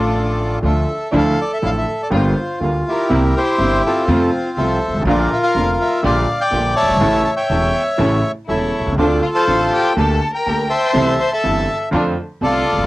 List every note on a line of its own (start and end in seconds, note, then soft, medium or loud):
0.00 0.56 A1 medium
0.00 0.57 A1 medium
0.00 0.57 A2 medium
0.00 0.56 D3 medium
0.00 0.56 F3 medium
0.00 0.56 A3 medium
0.00 0.57 A3 medium
0.00 0.56 D4 medium
0.00 0.57 D4 medium
0.00 0.56 F4 medium
0.00 0.58 F4 medium
0.00 0.59 F4 medium
0.00 0.59 A4 medium
0.00 0.57 D5 medium
0.62 0.83 D2 medium
0.62 0.83 D3 medium
0.62 0.83 F3 medium
0.62 0.83 A3 medium
0.62 0.84 A3 medium
0.62 0.84 D4 medium
0.62 0.83 F4 medium
0.62 0.84 F4 medium
0.62 1.10 A4 medium
0.68 1.16 E5 medium
1.11 1.33 D2 medium
1.11 1.34 D2 loud
1.11 1.33 D3 medium
1.11 1.33 F3 medium
1.11 1.33 A3 medium
1.11 1.33 D4 medium
1.11 1.33 E4 medium
1.16 2.09 A4 medium
1.16 1.40 F5 loud
1.41 1.52 D5 medium
1.54 1.58 E5 medium
1.62 1.83 A1 medium
1.62 1.83 A2 medium
1.62 1.83 D3 soft
1.62 1.83 F3 soft
1.62 1.83 A3 soft
1.62 1.83 D4 soft
1.62 1.83 E4 medium
1.62 1.70 F5 loud
1.78 2.02 E5 medium
2.03 2.08 D5 medium
2.10 2.32 G1 medium
2.10 2.32 G1 loud
2.10 2.32 G2 medium
2.10 2.32 D3 medium
2.10 2.32 G3 medium
2.10 2.32 A#3 medium
2.10 2.32 F4 medium
2.14 3.08 F4 medium
2.14 2.59 C5 medium
2.60 2.81 D2 medium
2.60 2.82 D2 medium
2.60 2.81 D3 medium
2.60 2.81 G3 soft
2.60 2.82 G3 medium
2.60 2.81 A#3 soft
2.60 2.82 A#3 medium
2.60 2.81 F4 medium
2.60 2.82 F4 medium
2.88 3.35 E4 medium
2.88 3.35 G4 medium
2.88 3.39 A#4 medium
3.09 3.30 C2 medium
3.09 3.31 C2 medium
3.09 3.30 C3 medium
3.09 3.30 G3 medium
3.09 3.30 A#3 medium
3.09 3.31 A#3 medium
3.09 3.30 C4 medium
3.09 3.30 E4 medium
3.09 3.31 E4 medium
3.36 4.05 E4 medium
3.36 4.05 G4 medium
3.36 3.81 C5 loud
3.58 3.79 G1 medium
3.58 3.80 G1 medium
3.58 3.79 G2 medium
3.58 3.79 C3 soft
3.58 3.79 G3 soft
3.58 3.79 A#3 soft
3.58 3.79 C4 soft
3.58 3.79 E4 medium
3.86 4.79 C4 medium
3.86 4.79 F4 medium
3.86 4.30 A4 medium
4.08 4.28 F2 loud
4.08 4.29 F2 medium
4.08 4.28 C3 medium
4.08 4.29 F3 medium
4.08 4.28 A3 medium
4.08 4.29 A3 medium
4.08 4.28 C4 medium
4.08 4.28 F4 medium
4.08 4.29 F4 medium
4.57 4.77 C2 medium
4.57 4.78 C3 medium
4.57 4.77 F3 soft
4.57 4.77 A3 medium
4.57 4.77 A3 soft
4.57 4.77 C4 medium
4.57 4.78 F4 medium
4.57 5.03 A4 medium
4.57 5.03 C5 medium
4.57 5.03 E5 medium
4.88 4.94 G1 medium
4.94 4.99 G#1 medium
4.94 5.00 G#1 medium
5.00 5.04 A1 medium
5.00 5.07 A1 medium
5.05 5.26 A#1 loud
5.05 5.27 A#1 medium
5.05 5.27 A#2 loud
5.05 5.27 D3 medium
5.05 5.27 F3 medium
5.05 5.26 A#3 medium
5.05 5.27 A#3 medium
5.05 5.26 D4 medium
5.05 5.26 F4 medium
5.05 5.27 F4 medium
5.05 6.01 F4 medium
5.05 6.01 A#4 medium
5.05 5.30 D5 medium
5.33 5.38 E5 medium
5.43 5.71 F5 medium
5.54 5.75 F1 medium
5.54 5.76 F1 medium
5.54 5.75 F2 medium
5.54 5.75 D3 soft
5.54 5.75 F3 soft
5.54 5.75 A#3 medium
5.54 5.76 A#3 soft
5.54 5.75 D4 soft
5.54 5.75 F4 medium
5.73 5.79 F5 medium
5.81 6.03 E5 loud
6.03 6.24 A#1 medium
6.03 6.24 A#1 loud
6.03 6.24 A#2 medium
6.03 6.24 D3 medium
6.03 6.24 G3 medium
6.03 6.24 A#3 medium
6.03 6.24 F4 medium
6.03 6.24 G4 medium
6.03 6.40 D5 medium
6.03 6.42 F5 medium
6.41 6.97 D5 medium
6.41 6.74 G5 loud
6.50 6.72 A#1 medium
6.50 6.72 A#2 medium
6.50 6.72 D3 medium
6.50 6.72 G3 soft
6.50 6.72 A#3 soft
6.50 6.73 A#3 medium
6.50 6.72 F4 medium
6.50 6.73 F4 medium
6.50 6.73 G4 medium
6.76 7.35 C#5 medium
6.76 7.35 E5 medium
6.76 7.22 A5 loud
6.82 6.88 F#1 medium
6.88 6.95 G1 medium
6.93 7.00 G#1 medium
6.93 7.01 G#1 medium
7.00 7.21 A1 loud
7.00 7.22 A1 loud
7.00 7.21 A2 medium
7.00 7.21 C#3 medium
7.00 7.21 E3 medium
7.00 7.21 A3 medium
7.00 7.21 C#4 medium
7.00 7.21 E4 medium
7.00 7.22 E4 medium
7.00 7.21 A4 medium
7.25 7.30 A5 loud
7.36 8.32 C#5 medium
7.36 8.32 E5 medium
7.36 7.83 G5 medium
7.49 7.70 E1 medium
7.49 7.71 E2 medium
7.49 7.70 C#3 soft
7.49 7.71 E3 soft
7.49 7.71 A3 soft
7.49 7.70 C#4 soft
7.49 7.70 E4 soft
7.49 7.71 E4 medium
7.49 7.70 A4 medium
7.98 8.20 A1 medium
7.98 8.20 A1 loud
7.98 8.19 A2 medium
7.98 8.19 C#3 medium
7.98 8.19 E3 medium
7.98 8.20 A3 medium
7.98 8.20 C#4 medium
7.98 8.19 E4 medium
7.98 8.20 E4 medium
7.98 8.20 A4 medium
8.48 8.70 E1 medium
8.48 8.70 E2 soft
8.48 8.70 C#3 soft
8.48 8.70 E3 soft
8.48 8.70 A3 soft
8.48 8.69 C#4 soft
8.48 8.95 E4 medium
8.48 8.70 E4 soft
8.48 8.70 E4 medium
8.48 8.95 A4 medium
8.48 8.70 A4 medium
8.48 8.95 C#5 medium
8.48 8.95 E5 medium
8.80 8.86 B1 soft
8.86 8.92 C2 medium
8.92 8.97 C#2 medium
8.92 8.98 C#2 medium
8.98 9.19 D2 medium
8.98 9.20 D2 medium
8.98 9.20 D3 medium
8.98 9.19 A3 medium
8.98 9.19 C4 medium
8.98 9.19 D4 medium
8.98 9.22 D4 medium
8.98 9.19 F4 medium
8.98 9.93 F4 medium
8.98 9.20 F4 medium
8.98 9.93 A4 medium
8.98 9.19 C5 medium
8.98 9.21 D5 medium
9.22 9.28 F4 medium
9.22 9.28 F5 medium
9.35 9.70 A4 medium
9.35 9.93 C5 medium
9.35 9.93 F5 medium
9.35 9.73 A5 loud
9.47 9.68 A1 medium
9.47 9.68 A2 medium
9.47 9.68 D3 soft
9.47 9.68 A3 soft
9.47 9.69 C4 soft
9.47 9.69 D4 medium
9.47 9.69 F4 medium
9.47 9.69 F4 soft
9.47 9.69 C5 medium
9.73 9.95 G4 medium
9.73 9.96 G5 loud
9.96 10.17 D2 medium
9.96 10.18 D2 loud
9.96 10.17 D3 medium
9.96 10.17 A3 medium
9.96 10.17 A#3 medium
9.96 10.18 A#3 medium
9.96 10.17 G4 medium
9.96 10.18 G4 medium
9.96 10.31 A4 medium
9.96 10.18 A4 medium
9.96 10.31 A5 medium
10.34 10.68 A#4 medium
10.34 10.91 G5 medium
10.34 10.68 A#5 medium
10.46 10.67 D2 medium
10.46 10.67 D3 medium
10.46 10.67 A3 soft
10.46 10.66 A#3 medium
10.46 10.67 A#3 soft
10.46 10.67 G4 soft
10.46 10.67 A4 medium
10.70 11.17 C5 medium
10.70 11.31 E5 medium
10.70 11.33 A5 medium
10.70 11.16 C6 loud
10.93 11.15 C2 medium
10.93 11.15 C3 medium
10.93 11.15 E3 medium
10.93 11.15 A3 medium
10.93 11.15 C4 medium
10.93 11.15 E4 medium
10.93 11.15 G4 medium
10.93 11.16 A4 medium
11.20 11.31 C5 medium
11.20 11.32 C6 loud
11.32 11.78 A4 medium
11.32 11.89 E5 medium
11.32 11.78 A5 loud
11.43 11.64 G1 medium
11.43 11.65 G1 medium
11.43 11.64 G2 medium
11.43 11.64 E3 medium
11.43 11.64 A3 soft
11.43 11.64 C4 soft
11.43 11.65 C4 medium
11.43 11.65 E4 soft
11.43 11.64 G4 medium
11.43 11.65 A4 medium
11.91 12.13 F2 medium
11.91 12.13 F2 loud
11.91 12.13 D3 medium
11.91 12.13 F3 medium
11.91 12.13 A3 medium
11.91 12.13 C4 medium
11.91 12.13 D4 medium
11.91 12.13 F4 medium
11.91 12.13 A4 medium
12.41 12.62 C2 medium
12.41 12.62 C3 medium
12.41 12.62 D3 soft
12.41 12.62 A3 soft
12.41 12.62 C4 soft
12.41 12.62 D4 medium
12.41 12.62 F4 medium
12.41 12.62 F4 soft
12.41 12.62 A4 medium
12.41 12.87 A4 medium
12.41 12.87 D5 medium
12.46 12.87 F4 medium
12.46 12.87 F5 loud
12.72 12.77 E1 medium
12.72 12.78 E2 medium
12.77 12.83 F1 medium
12.77 12.84 F2 medium
12.83 12.87 F#2 medium